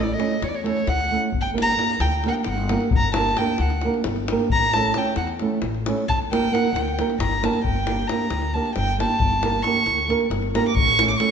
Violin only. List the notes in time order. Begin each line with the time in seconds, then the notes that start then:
0.03 D5
0.14 D#5
0.44 C#5
0.48 D5
0.55 C#5
0.65 C#5
0.88 F#5
1.41 G5
1.62 A#5
2.01 G5
2.27 G5
2.44 G5
2.49 F#5
2.97 A#5
3.15 A5
3.38 G5
3.61 F#5
4.53 A#5
4.73 A5
4.98 G5
5.17 F#5
6.08 A5
6.32 G5
6.53 F#5
6.74 G5
7.20 A#5
7.45 A5
7.65 G5
8.07 A#5
8.54 A5
8.76 G5
9.00 A5
9.63 C#6
10.55 A#5
10.68 D6
10.75 C#6
11.10 D6
11.17 C#6